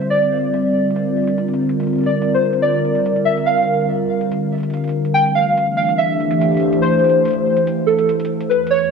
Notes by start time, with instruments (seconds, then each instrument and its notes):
Already playing: ambient pad D3 G3 C4 F4 A#4
0.01 closed hi-hat
0.10 synth keys D5, closed hi-hat
0.22 closed hi-hat
0.54 closed hi-hat
0.91 closed hi-hat
0.96 closed hi-hat
1.17 closed hi-hat
1.24 closed hi-hat
1.27 closed hi-hat
1.31 closed hi-hat
1.38 closed hi-hat
1.48 closed hi-hat
1.53 closed hi-hat
1.69 closed hi-hat
1.80 closed hi-hat
1.83 closed hi-hat
1.87 closed hi-hat
1.90 closed hi-hat
1.93 closed hi-hat
1.96 closed hi-hat
1.98 closed hi-hat
2.01 closed hi-hat
2.03 closed hi-hat
2.06 synth keys D5, closed hi-hat
2.09 closed hi-hat
2.22 closed hi-hat
2.34 synth keys C5
2.53 closed hi-hat
2.62 synth keys D5, closed hi-hat
2.85 closed hi-hat
2.95 closed hi-hat
3.06 closed hi-hat
3.16 closed hi-hat
3.25 synth keys E5
3.37 closed hi-hat
3.46 synth keys F5, closed hi-hat
3.58 closed hi-hat
4.21 closed hi-hat
4.32 closed hi-hat
4.53 closed hi-hat
4.55 closed hi-hat
4.58 closed hi-hat
4.60 closed hi-hat
4.63 closed hi-hat
4.70 closed hi-hat
4.74 closed hi-hat
4.77 closed hi-hat
4.84 closed hi-hat
4.88 closed hi-hat
4.89 closed hi-hat
4.91 closed hi-hat
5.05 closed hi-hat
5.14 ambient pad E3, synth keys G5, closed hi-hat
5.21 ambient pad A3 D4
5.26 closed hi-hat
5.35 synth keys F5
5.57 closed hi-hat
5.65 ambient pad G4
5.77 synth keys F5
5.89 ambient pad C5, closed hi-hat
5.98 synth keys E5, closed hi-hat
6.20 closed hi-hat
6.31 closed hi-hat
6.41 closed hi-hat
6.52 closed hi-hat
6.54 closed hi-hat
6.57 closed hi-hat
6.60 closed hi-hat
6.73 closed hi-hat
6.82 synth keys C5, closed hi-hat
6.94 closed hi-hat
6.99 closed hi-hat
7.04 closed hi-hat
7.09 closed hi-hat
7.25 closed hi-hat
7.28 closed hi-hat
7.31 closed hi-hat
7.33 closed hi-hat
7.57 closed hi-hat
7.67 closed hi-hat
7.87 synth keys A4, closed hi-hat
7.99 closed hi-hat
8.09 closed hi-hat
8.20 closed hi-hat
8.25 closed hi-hat
8.41 closed hi-hat
8.50 ambient pad E2, synth keys B4, closed hi-hat
8.67 ambient pad D#3, synth keys C#5, closed hi-hat
8.79 ambient pad B4
8.83 ambient pad F#4